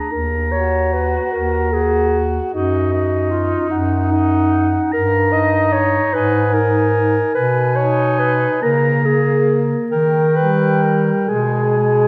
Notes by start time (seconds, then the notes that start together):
Already playing: D4 A#5
0.11 D#2 A#4
0.51 F#4 C#5
0.93 B4
1.32 D#2 A#4
1.73 F#4 G#4
2.53 F#2 D#4 F#4 D#5
2.93 D#4
3.31 F4
3.70 F#2 D#4 F#5
4.12 D#4
4.92 G2 A#4 A#5
5.32 D#4 D#5
5.73 C#5
6.13 G#2 D#4 B4 G#5
6.54 D#4 A#4
7.34 B2 B4 G#5
7.76 D#4 C#5
8.19 B4
8.62 C#3 A#3 A#4 A#5
9.05 A#3 G#4
9.91 D#3 A#4 G5
10.36 G3 B4
10.83 A#4
11.29 B2 G#3 G#4 G#5
11.77 G#3